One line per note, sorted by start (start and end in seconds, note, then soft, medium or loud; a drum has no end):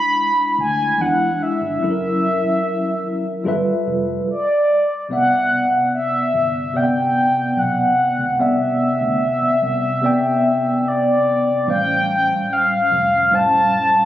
0.00 0.98 G#3 medium
0.00 1.00 D4 medium
0.00 1.02 E4 medium
0.00 0.55 B5 loud
0.58 0.90 D2 medium
0.58 1.03 G#5 loud
0.98 1.31 E2 loud
0.98 1.54 G#3 medium
0.98 1.55 D4 medium
0.98 1.44 F#5 loud
1.02 1.56 E4 medium
1.42 3.88 E5 loud
1.61 1.77 G1 medium
1.80 2.29 F#1 loud
1.80 2.91 F#3 medium
1.80 2.92 C#4 medium
1.80 2.92 E4 medium
1.84 1.89 A4 medium
1.91 2.96 A#4 medium
2.44 muted fingered electric bass stroke soft
3.44 3.62 G1 loud
3.44 4.11 G3 medium
3.44 4.11 F4 medium
3.44 4.12 A4 medium
3.44 4.12 B4 medium
3.48 4.13 E5 loud
3.67 muted fingered electric bass stroke soft
3.87 4.19 F1 medium
4.30 5.07 D5 loud
5.09 5.74 C2 loud
5.09 6.20 C3 medium
5.09 6.20 B3 medium
5.09 6.21 D5 medium
5.09 5.89 F#5 loud
5.13 6.22 E5 medium
5.94 6.78 E5 loud
6.34 7.32 G1 medium
6.73 7.84 C3 medium
6.73 7.85 B3 medium
6.73 7.86 D5 medium
6.73 7.60 G5 loud
6.77 6.82 F#5 medium
6.84 7.89 G5 medium
7.57 7.89 B1 medium
7.57 8.42 F#5 loud
8.19 8.35 C#2 loud
8.38 8.71 C2 loud
8.38 9.49 C3 medium
8.38 9.49 B3 medium
8.38 9.50 D5 medium
8.38 10.89 E5 loud
8.42 9.51 F#5 medium
9.01 9.17 D2 medium
9.42 muted fingered electric bass stroke soft
9.62 9.94 C2 loud
10.02 11.13 C3 medium
10.02 11.14 B3 medium
10.02 11.14 D5 medium
10.06 11.15 G5 loud
10.88 11.69 D5 loud
11.66 12.31 A1 loud
11.66 12.77 A2 medium
11.66 12.78 G3 medium
11.66 12.78 C#4 medium
11.66 12.79 C5 medium
11.70 12.79 F5 medium
11.70 12.54 G5 loud
12.53 13.36 F5 loud
12.91 13.90 F1 medium
13.30 14.05 A2 medium
13.30 14.05 G3 medium
13.30 14.05 C#4 medium
13.30 14.05 C5 medium
13.35 14.05 F5 medium
13.35 14.05 A5 loud